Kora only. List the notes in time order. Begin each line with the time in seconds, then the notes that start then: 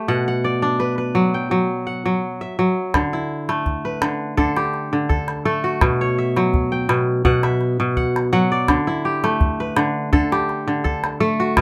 Already playing: A3 G4 A4
0.08 B2 F#5
0.28 F#5
0.44 D5
0.62 D4
0.80 B4
0.98 B4
1.15 F#3
1.34 G5
1.51 F#3
1.87 F#5
2.06 F#3
2.41 E5
2.59 F#3
2.95 D3
3.13 E4
3.49 A3
3.85 B4
4.02 D3
4.37 D3 A4
4.57 G4
4.93 D3
5.09 A4
5.45 A3 A4
5.64 F#4
5.82 B2
6.01 C#5
6.18 E5
6.37 F#3
6.72 G5
6.89 B2
7.25 B2 F#5
7.44 E5
7.80 B2
7.97 F#5
8.33 F#3 F#5
8.52 D5
8.69 D3
8.87 E4
9.05 G4
9.24 A3
9.60 B4
9.77 D3
10.13 D3 A4
10.32 G4
10.68 D3
10.84 A4
11.20 A3 A4
11.40 F#4
11.57 B2